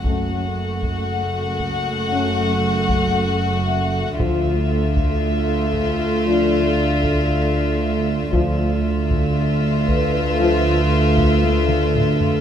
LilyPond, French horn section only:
\new Staff \with { instrumentName = "French horn section" } { \time 4/4 \key d \lydian \tempo 4 = 58 <a cis'>8 r4. <a cis'>8 r4. | <f f'>8 r4. <f f'>8 r4. | <f f'>8 r4. <f f'>8 r4. | }